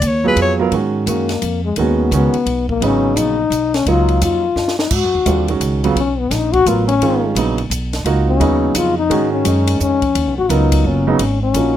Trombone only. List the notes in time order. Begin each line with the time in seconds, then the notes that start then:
1.08 A#3
1.65 G#3
1.79 B3
2.16 B3
2.70 A#3
2.84 C#4
3.18 D#4
3.75 C#4
3.89 F4
4.24 F4
4.80 D#4
4.94 F#4
5.97 C#4
6.19 B3
6.33 D#4
6.53 F#4
6.67 F4
6.88 C#4
8.28 C#4
8.77 F4
8.98 D#4
9.33 C#4
9.82 C#4
10.38 F#4
10.53 D#4
10.88 C#4
11.43 C#4